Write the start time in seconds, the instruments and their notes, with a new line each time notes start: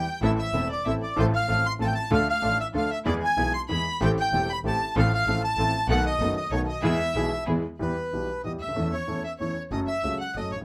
Already playing: bandoneon G5, violin G5
0.21 double bass A1, grand piano A1 A2 E3 A3 C4 A4, string section C4 E4 A4, violin E5, bandoneon E5
0.38 violin E5, bandoneon E5
0.53 double bass E1, grand piano E1 E2 E3 A3 C4 A4, string section C4 E4 A4
0.69 violin D5, bandoneon D5
0.85 grand piano A1 A2 E3 A3 C4 A4, double bass A1, string section C4 E4 A4, violin E5, bandoneon E5
1.03 violin D5, bandoneon D5
1.16 grand piano A1 A2 F3 A3 C4 A4, double bass A1, string section C4 F4 A4, violin C5, bandoneon C5
1.34 violin F5, bandoneon F5
1.48 grand piano A1 A2 F3 A3 C4 A4, double bass A1, string section C4 F4 A4
1.66 violin C6, bandoneon C6
1.79 grand piano A1 A2 F3 A3 C4 A4, double bass A1, string section C4 F4 A4, bandoneon A5, violin A5
1.86 violin G5, bandoneon G5
1.95 bandoneon A5, violin A5
2.11 double bass D2, grand piano D2 D3 F3 A3 D4 A4, string section D4 F4 A4, violin F5, bandoneon F5
2.29 violin F5, bandoneon F5
2.41 grand piano A1 A2 F3 A3 D4 A4, double bass A1, string section D4 F4 A4
2.61 bandoneon E5, violin E5
2.73 grand piano D2 D3 F3 A3 D4 A4, double bass D2, string section D4 F4 A4, violin F5, bandoneon F5
2.91 violin E5, bandoneon E5
3.05 grand piano E2 E3 G#3 B3 G#4, double bass E2, string section B3 E4 G#4, violin D5, bandoneon D5
3.22 violin G#5, bandoneon G#5
3.37 double bass B1, grand piano B1 B2 E3 G#3 B3 G#4, string section B3 E4 G#4
3.54 violin C6, bandoneon C6
3.69 double bass E2, grand piano E2 E3 G#3 B3 G#4, string section B3 E4 G#4, violin B5
3.73 bandoneon B5
4.01 grand piano A1 A2 E3 A3 C4 G4, double bass A1, string section C4 G4 A4, violin G5
4.05 bandoneon G5
4.18 violin G5, bandoneon G5
4.33 double bass E1, grand piano E1 E2 E3 A3 C4 G4, string section C4 G4 A4
4.50 violin B5, bandoneon B5
4.64 grand piano A1 A2 E3 A3 C4 G4, double bass A1, string section C4 G4 A4, bandoneon A5, violin A5
4.96 double bass A1, grand piano A1 A2 F3 A3 C4 A4, string section C4 F4 A4, violin F5, bandoneon F5
5.13 violin F5, bandoneon F5
5.26 double bass A1, grand piano A1 A2 F3 A3 C4 A4, string section C4 F4 A4
5.44 violin A5, bandoneon A5
5.57 double bass A1, grand piano A1 A2 F3 A3 C4 A4, string section C4 F4 A4
5.88 double bass B1, grand piano B1 B2 D#3 A3 B3 F#4, string section B3 D#4 A4, violin F#5, bandoneon F#5
6.06 bandoneon D#5, violin D#5
6.20 double bass F#1, grand piano F#1 F#2 D#3 A3 B3 F#4, string section B3 D#4 A4
6.37 bandoneon D#5, violin D#5
6.51 double bass B1, grand piano B1 B2 D#3 A3 B3 F#4, string section B3 D#4 A4, violin C#5, bandoneon C#5
6.67 violin D#5, bandoneon D#5
6.82 double bass E2, grand piano E2 E3 G#3 B3 G#4, string section B3 E4 G#4, violin E5, bandoneon E5
7.14 double bass B1, grand piano B1 B2 E3 G#3 B3 G#4, string section B3 E4 G#4
7.46 double bass E2, grand piano E2 E3 G#3 B3 G#4, string section B3 E4 G#4
7.79 grand piano E2 E3 G3 B3 G4, double bass E2, violin B4, bandoneon B4
8.13 double bass B1, grand piano B1 B2 E3 G3 B3 G4
8.44 grand piano E2 E3 G3 B3 G4, double bass E2, violin D#5, bandoneon D#5
8.59 double bass D2, violin E5, bandoneon E5
8.66 grand piano C#2 D2
8.73 grand piano D#2 E2 E3 A3 C#4 A4
8.77 double bass E2
8.92 violin C#5, bandoneon C#5
9.08 grand piano E2 E3 A3 C#4 A4, double bass E2
9.24 violin E5, bandoneon E5
9.39 double bass E2, grand piano E2 E3 A3 C#4 A4, violin C#5, bandoneon C#5
9.71 double bass F#1, grand piano F#2 F#3 A3 C#4 A4, violin D#5, bandoneon D#5
9.88 bandoneon E5, violin E5
10.04 double bass C#2, grand piano C#2 C#3 F#3 A3 C#4 A4
10.20 violin F#5, bandoneon F#5
10.36 double bass F#1, grand piano F#2 F#3 A3 C#4 A4, violin D#5, bandoneon D#5
10.52 double bass A1, violin C#5, bandoneon C#5
10.57 grand piano G#1
10.61 grand piano A1